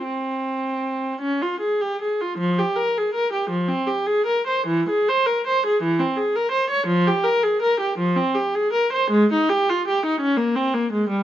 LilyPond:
\new Staff \with { instrumentName = "Viola" } { \time 6/8 \key f \minor \tempo 4. = 53 c'4. des'16 f'16 aes'16 g'16 aes'16 f'16 | f16 g'16 bes'16 aes'16 bes'16 g'16 f16 c'16 g'16 aes'16 bes'16 c''16 | e16 aes'16 c''16 bes'16 c''16 aes'16 e16 c'16 aes'16 bes'16 c''16 des''16 | f16 g'16 bes'16 aes'16 bes'16 g'16 f16 c'16 g'16 aes'16 bes'16 c''16 |
aes16 ees'16 g'16 f'16 g'16 ees'16 des'16 bes16 c'16 bes16 aes16 g16 | }